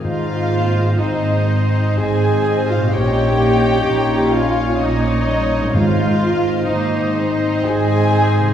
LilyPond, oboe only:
\new Staff \with { instrumentName = "Oboe" } { \time 3/4 \key aes \major \tempo 4 = 64 c''4 c''4 c''4 | des''2 des''4 | c''8 r8 c''4 c''4 | }